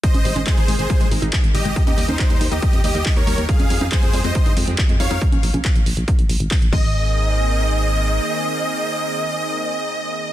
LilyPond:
<<
  \new Staff \with { instrumentName = "Supersaw synth" } { \time 4/4 \key aes \major \tempo 4 = 139 <c'' ees''>8. r16 <aes' c''>8. <aes' c''>8. r4 <g' ees''>8~ | <g' ees''>16 <g' ees''>8 <ees' c''>8. r16 <g' ees''>8. <g' ees''>8. <bes' des''>8. | <aes' f''>8. r16 <aes' c''>8. <c'' ees''>8. r4 <des'' f''>8 | r2. r8 ees''8~ |
ees''1~ | ees''1 | }
  \new Staff \with { instrumentName = "Analog synth pad" } { \time 4/4 \key aes \major <c aes bes ees'>8 <c aes bes ees'>8 <c aes bes ees'>8 <c aes bes ees'>8 <c aes bes ees'>8 <c aes bes ees'>8 <c aes bes ees'>8 <c aes bes ees'>8 | <ees g bes g'>8 <ees g bes g'>8 <ees g bes g'>8 <ees g bes g'>8 <ees g bes g'>8 <ees g bes g'>8 <ees g bes g'>8 <ees g bes g'>8 | <f aes c' g'>8 <f aes c' g'>8 <f aes c' g'>8 <f aes c' g'>8 <f aes c' g'>8 <f aes c' g'>8 <f aes c' g'>8 <f aes c' g'>8 | r2. r8 <ees bes c' aes'>8~ |
<ees bes c' aes'>1~ | <ees bes c' aes'>1 | }
  \new Staff \with { instrumentName = "Synth arpeggio sound" } { \clef bass \time 4/4 \key aes \major aes16 r16 g16 aes16 ees'16 ees'16 aes16 r16 g16 aes16 ees'16 ees'16 aes16 r16 g16 aes16 | ees'16 ees'16 g16 r16 g16 g16 ees'16 ees'16 g16 r16 g16 g16 ees'16 ees'16 g16 r16 | g16 aes16 ees'16 ees'16 aes16 r16 g16 aes16 ees'16 ees'16 aes16 r16 g16 aes16 ees'16 ees'16 | r2. r8 aes8~ |
aes8 r2. r8 | r1 | }
  \new Staff \with { instrumentName = "FM bass" } { \clef bass \time 4/4 \key aes \major r16 aes,,16 aes,,16 aes,,16 r16 aes,,16 aes,,16 aes,,16 r16 bes,,16 aes,,16 aes,,16 r16 aes,,16 aes,,16 aes,,16 | r16 ees,16 ees,16 ees,16 r16 ees,16 ees,16 ees,16 r16 f,16 ees,16 ees,16 r16 ees,16 ees,16 ees,16 | r16 f,16 f,16 f,16 r16 f,16 f,16 f,16 r16 g,16 f,16 f,16 r16 f,16 f,16 f,16 | r16 bes,,16 bes,,16 bes,,16 r16 bes,,16 bes,,16 bes,,16 r16 bes,,16 bes,,16 aes,,16 r16 bes,,16 aes,,8~ |
aes,,2. r4 | r1 | }
  \new DrumStaff \with { instrumentName = "Drums" } \drummode { \time 4/4 <hh bd>16 <cgho hh>16 hho16 <cgho hh>16 <hc hh bd>16 hh16 hho16 hh16 <hh bd>16 hh16 hho16 hh16 <hc hh bd>16 hh16 hho16 hh16 | <hh bd>16 <cgho hh>16 hho16 <cgho hh>16 <hc hh bd>16 hh16 hho16 hh16 <hh bd>16 hh16 hho16 hh16 <hc hho bd>16 hh16 hho16 hh16 | <hh bd>16 <cgho hh>16 hho16 <cgho hh>16 <hc hh bd>16 hh16 hho16 hh16 <hh bd>16 hh16 hho16 hh16 <hc hh bd>16 hh16 hho16 hh16 | <hh bd>16 <cgho hh>16 hho16 <cgho hh>16 <hc hh bd>16 hh16 hho16 hh16 <hh bd>16 hh16 hho16 hh16 <hc hho bd>16 hh16 <cymc bd>8 |
r4 r4 r4 r4 | r4 r4 r4 r4 | }
>>